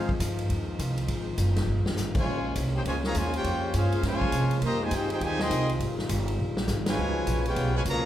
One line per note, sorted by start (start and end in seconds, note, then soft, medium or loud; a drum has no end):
0.00 0.19 G#2 medium
0.00 2.22 D#3 medium
0.00 2.23 F3 medium
0.00 4.58 G#3 medium
0.00 0.11 D#4 medium
0.00 2.23 F4 medium
0.00 0.11 G#4 medium
0.00 0.11 C5 medium
0.00 0.11 F5 medium
0.09 kick medium
0.20 0.48 G2 loud
0.20 kick soft
0.20 hi-hat pedal medium
0.20 ride medium
0.39 ride medium
0.49 0.78 D#2 medium
0.49 kick soft
0.49 ride medium
0.79 1.08 C2 loud
0.79 kick soft
0.79 hi-hat pedal medium
0.79 ride medium
0.97 ride medium
1.08 1.37 G#1 medium
1.08 kick soft
1.08 ride medium
1.38 1.66 F#1 loud
1.38 kick soft
1.38 hi-hat pedal medium
1.38 ride medium
1.56 snare medium
1.56 ride medium
1.67 1.85 G1 medium
1.86 muted upright bass stroke soft
1.86 snare medium
1.97 2.25 G#1 loud
1.97 snare medium
1.97 hi-hat pedal medium
2.15 2.53 C#3 medium
2.15 2.53 F3 medium
2.15 2.53 G#3 medium
2.15 2.54 F4 medium
2.15 2.54 C5 medium
2.15 2.54 C#5 medium
2.15 2.55 G#5 medium
2.15 kick medium
2.15 crash medium
2.26 2.55 A#1 medium
2.26 4.60 C#3 medium
2.26 4.60 A#3 medium
2.26 4.60 C#4 medium
2.55 2.84 C2 loud
2.55 kick soft
2.55 hi-hat pedal medium
2.55 ride medium
2.74 2.81 D#4 medium
2.74 2.79 G4 medium
2.74 2.81 G#4 medium
2.74 2.81 C5 medium
2.74 2.81 G5 medium
2.85 3.14 C#2 medium
2.85 2.94 C#3 medium
2.85 2.94 F3 medium
2.85 2.94 G#3 medium
2.85 2.95 F4 medium
2.85 2.95 C5 medium
2.85 2.95 C#5 medium
2.85 2.95 G#5 medium
2.85 kick soft
2.85 ride medium
3.04 3.14 C#3 medium
3.04 3.14 F3 medium
3.04 3.14 A#3 medium
3.04 3.15 G#4 medium
3.04 3.15 C#5 medium
3.04 3.15 F5 medium
3.04 3.15 A#5 medium
3.04 snare medium
3.15 3.43 D#2 loud
3.15 3.33 C#3 medium
3.15 3.34 F3 medium
3.15 3.33 G#3 medium
3.15 3.34 F4 medium
3.15 3.34 C5 medium
3.15 3.34 C#5 medium
3.15 3.34 G#5 loud
3.15 kick soft
3.15 hi-hat pedal medium
3.15 ride medium
3.33 3.72 G#3 medium
3.33 3.72 C#4 medium
3.33 3.72 F4 medium
3.33 3.72 G4 medium
3.33 3.72 C5 medium
3.33 3.72 C#5 medium
3.33 3.72 G5 loud
3.33 ride medium
3.44 3.73 F2 loud
3.44 kick soft
3.44 ride medium
3.74 4.02 G2 loud
3.74 4.02 G#3 medium
3.74 4.04 C#4 medium
3.74 4.04 F4 medium
3.74 4.04 G#4 medium
3.74 4.05 C5 medium
3.74 4.05 F5 medium
3.74 kick soft
3.74 hi-hat pedal medium
3.74 ride medium
3.92 ride medium
4.03 4.32 G#2 medium
4.03 4.58 C#3 medium
4.03 4.58 F3 medium
4.03 4.58 G#3 loud
4.03 4.60 F4 medium
4.03 4.60 C5 medium
4.03 4.60 C#5 medium
4.03 4.60 G#5 loud
4.03 kick soft
4.03 snare soft
4.03 ride medium
4.21 kick medium
4.32 4.61 C3 loud
4.32 kick soft
4.32 hi-hat pedal medium
4.32 ride medium
4.51 ride medium
4.62 4.90 F2 medium
4.62 6.96 D#3 medium
4.62 6.96 G3 medium
4.62 6.96 G#3 medium
4.62 4.80 A#3 medium
4.62 6.96 F4 medium
4.62 4.81 G4 loud
4.62 4.81 C5 loud
4.62 4.81 D#5 loud
4.62 4.81 A#5 loud
4.62 kick soft
4.62 ride medium
4.82 4.92 C3 medium
4.82 4.92 D#3 medium
4.82 4.92 G#3 medium
4.82 4.93 D#4 medium
4.82 4.93 G4 medium
4.82 4.93 C5 medium
4.82 4.93 G#5 loud
4.91 5.09 G2 loud
4.91 5.10 C4 medium
4.91 5.10 D#4 medium
4.91 5.11 D#4 medium
4.91 5.10 G4 medium
4.91 5.11 C5 medium
4.91 kick soft
4.91 hi-hat pedal medium
4.91 ride medium
4.95 5.12 G#4 medium
4.95 5.12 G5 medium
5.10 5.21 C4 medium
5.10 5.21 D#4 medium
5.10 5.22 D#4 medium
5.10 5.21 G4 medium
5.10 5.22 G#4 medium
5.10 5.21 C5 medium
5.10 5.22 G5 loud
5.10 muted upright bass stroke soft
5.10 ride medium
5.21 5.49 D#2 loud
5.21 5.40 C3 medium
5.21 5.40 D#3 medium
5.21 5.40 G#3 medium
5.21 5.40 D#4 medium
5.21 5.40 G4 medium
5.21 5.40 C5 medium
5.21 5.40 G#5 loud
5.21 kick soft
5.21 ride medium
5.39 5.70 D#3 loud
5.39 5.70 G#3 medium
5.39 5.70 C4 medium
5.39 5.70 G#4 loud
5.39 5.70 D#5 loud
5.39 5.70 G5 loud
5.39 5.70 C6 loud
5.39 snare medium
5.50 5.79 C2 medium
5.50 kick soft
5.50 hi-hat pedal medium
5.50 ride medium
5.69 ride medium
5.80 6.08 G#1 medium
5.80 kick soft
5.80 ride medium
5.99 snare soft
6.09 6.38 G1 loud
6.09 kick soft
6.09 hi-hat pedal medium
6.09 ride medium
6.28 ride medium
6.39 6.67 A#1 medium
6.57 snare medium
6.67 6.96 G#1 loud
6.67 snare medium
6.67 hi-hat pedal medium
6.86 7.42 B2 medium
6.86 7.42 F3 medium
6.86 7.42 G#3 loud
6.86 7.43 F4 loud
6.86 7.43 B4 medium
6.86 7.43 C#5 medium
6.86 7.43 G#5 loud
6.86 snare medium
6.86 ride medium
6.97 7.26 C#2 medium
6.97 8.05 C#3 medium
6.97 8.05 G#3 medium
6.97 8.05 B3 medium
6.97 8.05 F4 medium
7.26 7.55 A#1 loud
7.26 kick soft
7.26 hi-hat pedal medium
7.26 ride medium
7.45 7.74 G#3 medium
7.45 7.75 B3 medium
7.45 7.76 F4 medium
7.45 7.75 G4 medium
7.45 7.76 B4 medium
7.45 7.76 C#5 medium
7.45 7.76 G5 loud
7.45 ride medium
7.56 7.85 B1 loud
7.56 kick soft
7.56 ride medium
7.75 7.80 B2 medium
7.75 7.80 F3 medium
7.75 7.80 G#3 medium
7.75 7.81 F4 medium
7.75 7.81 B4 medium
7.75 7.82 C#5 medium
7.75 7.81 G#5 loud
7.85 8.05 C#2 loud
7.85 8.05 B2 medium
7.85 8.05 F3 medium
7.85 8.05 A#3 loud
7.85 8.05 G#4 medium
7.85 8.05 C#5 medium
7.85 8.05 F5 loud
7.85 8.05 A#5 loud
7.85 kick soft
7.85 hi-hat pedal medium
7.85 ride medium